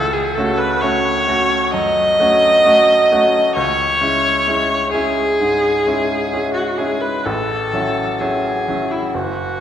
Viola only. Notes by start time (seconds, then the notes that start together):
Already playing: A4
0.13 G#4
0.35 A4
0.58 B4
0.81 C#5
1.72 D#5
3.56 C#5
4.92 G#4
6.54 F#4
6.78 G#4
7.01 B4
7.25 A4
8.20 G#4
8.91 E4
9.13 F#4